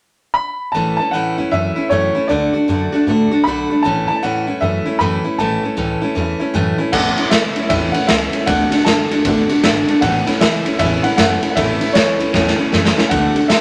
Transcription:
0.34 B5
0.72 A1 A2 E3 A3 C#4 E4 A5
0.97 C#4 E4 A5, muted upright bass stroke
1.02 A3
1.11 E2 A2 E3 A3 C#4 E4 F#5
1.38 F#2 A3 C#4 E4
1.51 F#2 E3 A3 C#4 E4 E5
1.76 A3 C#4 E4, muted upright bass stroke
1.89 F#2 A2 E3 A3 C#4 E4 C#5
2.15 A3 C#4 E4
2.28 D2 D3 A3 D4 F#4 D5
2.53 A3 D4 F#4, muted upright bass stroke
2.68 F#2 D3 A3 D4 F#4
2.92 A3 D4 F#4, muted upright bass stroke
3.07 A2 D3 A3 D4 F#4
3.31 A3 D4 F#4
3.44 B1 D3 A3 B5
3.48 D4 F#4
3.70 A3 D4 F#4
3.82 A1 A2 E3 A3 C#4 E4 A5
4.08 A3 C#4 E4 A5, muted upright bass stroke
4.16 A5
4.23 E2 A2 E3 A3 C#4 E4 F#5
4.47 F#2 A3 C#4 E4
4.61 F#2 E3 A3 C#4 E4 E5
4.86 A3 C#4 E4
4.99 F#2 A2 E3 A3 C#4 E4 B5
5.24 A3 C#4 E4
5.38 A1 A2 E3 A3 C#4 E4 A5
5.63 A3 C#4 E4, muted upright bass stroke
5.77 C#2 A2 E3 A3 C#4 E4
6.01 A3 C#4 E4, muted upright bass stroke
6.15 E2 E3 A3 C#4 E4
6.39 A3 C#4 E4, muted upright bass stroke
6.54 F#2 A2 E3 A3 C#4 E4
6.78 A3 C#4 E4, muted upright bass stroke
6.92 A1 A2 E3 A3 C#4 E4 F#5, kick, crash
7.18 A3 C#4 E4, ride
7.30 C#2 E3 A3 C#4 E5, snare, ride
7.35 E4
7.56 D2 A3 C#4 E4, ride
7.69 E2 A2 E3 A3 C#4 E4 E5, kick, ride
7.92 E4 F#5, muted upright bass stroke, ride
7.96 A3 C#4
8.07 C#2 E3 A3 C#4 E4 E5, snare, ride
8.33 A3 C#4 E4, ride
8.46 D2 D3 A3 D4 F#4 F#5, kick, ride
8.71 A3 D4 F#4, muted upright bass stroke, snare, ride
8.85 F#2 D3 A3 D4 F#4 A5, snare, ride
9.10 F#2 A3 D4 F#4, ride
9.25 A2 D3 A3 D4 F#4, kick, ride
9.49 A3 D4 F#4, ride
9.63 G#1 D3 A3 D4 F#4, snare, ride
9.87 A3 D4 F#4, muted upright bass stroke, ride
10.01 A1 A2 E3 A3 C#4 E4 F#5, kick, ride
10.26 A3 C#4 E4, muted upright bass stroke, snare, ride
10.40 C#2 E3 A3 C#4 E4 E5, snare, ride
10.65 D2 A3 C#4 E4, ride
10.79 E2 A2 E3 A3 C#4 E4 E5, kick, ride
11.03 A3 C#4 E4 F#5, ride
11.17 F#2 E3 A3 C#4 E4 F#5, snare, ride
11.42 A3 C#4 E4, ride
11.51 F#5
11.56 A1 A2 E3 A3 C#4 E4 E5, kick, ride
11.81 A3 C#4 E4, ride
11.93 C#2 E3 A3 C#4 C#5, snare, ride
11.97 E4
12.19 D2 A3 C#4 E4, ride
12.34 E2 A2 E3 A3 C#4 E4, kick, snare
12.47 snare
12.58 A3 C#4 E4, muted upright bass stroke
12.72 F#2 E3 A3 C#4 E4, snare
12.85 snare
12.97 A3 C#4 E4, muted upright bass stroke, snare
13.09 D2 D3 A3 D4 F#4 F#5, kick, ride
13.35 A3 D4 F#4, muted upright bass stroke, ride
13.48 F#2 D3 A3 D4 F#4 E5, snare, ride

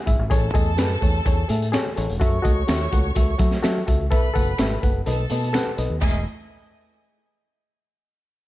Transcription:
0.06 G#1 E4 G#4 E5, kick, closed hi-hat
0.19 G#1
0.30 A1 A2 G#4 A4 C#5 A5, kick, closed hi-hat
0.43 muted conga
0.54 E2 G#4 A4 D#5, kick, closed hi-hat, high conga
0.77 F#2 G#4 A4 B4, finger snap, snare, closed hi-hat, muted conga, high conga
0.90 muted conga
1.01 E2 G#4 A4 C#5, kick, closed hi-hat, high conga
1.25 E2 G#4 A4 C#5, kick, closed hi-hat, muted conga, low conga
1.48 A2 G#4 A4 E5, closed hi-hat, high conga
1.62 closed hi-hat, high conga
1.72 G#4 A4 C#5, finger snap, snare, closed hi-hat, muted conga, high conga
1.86 muted conga, low conga
1.96 A1 G#4 A4 C#5, closed hi-hat
2.10 E1, closed hi-hat
2.20 F#2 F#4 A4 C#5 E5 C#6, kick, closed hi-hat, muted conga
2.33 muted conga
2.42 C#2 F#4 A4 D#5, kick, closed hi-hat, high conga
2.67 D#2 F#4 A4 E5, finger snap, snare, closed hi-hat, muted conga, high conga
2.81 muted conga
2.92 C#2 F#4 A4 F#5, kick, closed hi-hat, high conga
3.15 C#2 F#4 A4 E5, kick, closed hi-hat, muted conga, low conga
3.30 muted conga
3.38 F#3 F#4 A4 E5, kick, closed hi-hat, high conga
3.51 snare, high conga
3.62 F#3 F#4 A4 E5, finger snap, snare, closed hi-hat, high conga
3.77 muted conga, low conga
3.87 C#2 F#4 A4 E5, kick, closed hi-hat
4.11 B1 B2 A4 B4 E5 B5, kick, closed hi-hat, muted conga
4.34 F#1 A4 B4 F#5, kick, closed hi-hat, high conga
4.58 G#1 A4 B4 E5, finger snap, snare, closed hi-hat, high conga
4.71 muted conga
4.82 F#1 A4 B4 F#5, kick, closed hi-hat, high conga
5.06 B1 B2 A4 B4 D#5 A5, closed hi-hat, muted conga, low conga
5.19 muted conga
5.30 B2 A4 B4 D#5, closed hi-hat, high conga
5.42 closed hi-hat, high conga
5.53 A4 B4 F#5, finger snap, snare, closed hi-hat, muted conga, high conga
5.66 muted conga, low conga
5.77 B1 A4 B4 D#5, closed hi-hat
5.90 D#2
6.01 E1 E2 E4 G#4 D#5 G#5, finger snap, kick, crash, high conga

